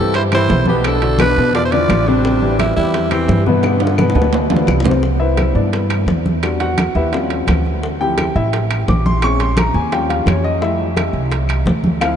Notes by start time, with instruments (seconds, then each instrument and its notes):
Already playing: upright bass G2, grand piano E3 E4 G4, trombone C4, tenor saxophone A4
0.13 trombone E4, tenor saxophone C5, high bongo, high conga, high timbale
0.31 grand piano E3 E4 G4, trombone E4, tenor saxophone C5, high conga, high timbale, claves
0.49 upright bass B1, high bongo, low bongo, high conga, low timbale
0.66 grand piano B2 B3 B4, trombone B3, tenor saxophone G4, high conga
0.83 trombone D4, high bongo, high conga, high timbale, claves
0.87 tenor saxophone A4
1.02 grand piano D3 D4 F#4, high bongo, high conga, high timbale
1.19 grand piano B2 B3 B4, trombone D4, tenor saxophone B4, high bongo, high conga, high timbale, claves
1.36 upright bass E2, grand piano B2 B3 B4, high conga
1.54 trombone F4, tenor saxophone D5, high bongo, high conga, high timbale
1.64 trombone E4, tenor saxophone C5
1.72 grand piano D3 E3 D4, trombone F4, tenor saxophone D5, high bongo, high conga, high timbale
1.89 upright bass A1, high bongo, low bongo, high conga, high timbale, low timbale, claves
2.07 grand piano C3 C4 C5, trombone G3, tenor saxophone D4, high bongo, high conga
2.24 grand piano C3 C4 C5, high bongo, high conga
2.41 grand piano E3 E4 G4, high conga
2.59 trombone G3, tenor saxophone E4, high bongo, high conga, high timbale, claves
2.76 upright bass E2, grand piano E3 E4 G4, trombone G3, tenor saxophone E4, high conga
2.94 high bongo, high conga, high timbale
3.11 trombone E3, grand piano E3 E4 G4, tenor saxophone C4, high conga, high timbale, claves
3.28 upright bass G2, high bongo, low bongo, high conga, low timbale
3.46 grand piano B2 B3 B4, trombone D3, tenor saxophone B3, high conga
3.63 high bongo, high conga, high timbale, claves
3.80 grand piano D3 D4 F4, high conga, high timbale
3.87 high bongo
3.98 grand piano B2 B3 B4, high bongo, high conga, claves
4.10 low bongo
4.15 upright bass D2, grand piano B2 B3 B4, high conga, high timbale
4.22 low bongo
4.33 low bongo, high conga, low timbale
4.50 grand piano D3 D4 F4, high conga, low timbale
4.56 low bongo
4.67 upright bass C2, low bongo, high conga, low timbale, claves
4.80 low bongo
4.84 grand piano C3 C4 C5, low conga, low timbale
4.91 low bongo
5.03 high bongo, high conga
5.20 grand piano E4 B4 C5 E5, high conga
5.37 high bongo, high conga, high timbale, claves
5.54 upright bass G2, grand piano B3 D4 E4 D5, high conga
5.73 high bongo, high conga, high timbale
5.90 high conga, high timbale, claves
6.07 upright bass E2, high bongo, low bongo, high conga
6.26 high conga
6.42 grand piano G3 D4 F#4, high bongo, high conga, high timbale, claves
6.60 grand piano F#4 F#5, high bongo, high conga, high timbale
6.78 high bongo, high conga, high timbale, claves
6.95 upright bass D#2, grand piano E4 G4 B4 E5, high conga
7.12 grand piano G3 C4 C#4 F4, high bongo, high conga, high timbale
7.30 high bongo, high conga, high timbale
7.47 upright bass D2, high bongo, low bongo, high conga, high timbale, claves
7.65 high bongo, high conga
7.83 high bongo, high conga
8.00 grand piano F3 C4 E4 G4 G5, high conga
8.18 high bongo, high conga, high timbale, claves
8.36 upright bass A1, grand piano E4 E5, high conga
8.53 high bongo, high conga, high timbale
8.70 high conga, high timbale, claves
8.88 upright bass A#1, grand piano D6, high bongo, low bongo, high conga
9.06 grand piano C6, high conga
9.22 grand piano G#3 C4 C#4 C#6, high bongo, high conga, high timbale, claves
9.40 grand piano C6, high bongo, high conga, high timbale
9.57 grand piano A#5, high bongo, high conga, high timbale, claves
9.74 upright bass D#2, grand piano G#5, high conga
9.92 grand piano G3 C#4 F4 G5, high bongo, high conga, high timbale
10.10 grand piano F5, high bongo, high conga, high timbale
10.26 upright bass F2, grand piano C#5, high bongo, low bongo, high conga, high timbale, low timbale, claves
10.44 grand piano D#5, high bongo, high conga
10.61 grand piano G3 A3 E4 E5, high bongo, high conga
10.79 high conga
10.97 high bongo, high conga, high timbale, claves
11.13 upright bass C2, high conga
11.31 high bongo, high conga, high timbale
11.49 high conga, high timbale, claves
11.66 upright bass D2, high bongo, low bongo, high conga
11.84 high conga
12.01 grand piano F3 C4 E4 F5, high bongo, high conga, high timbale, claves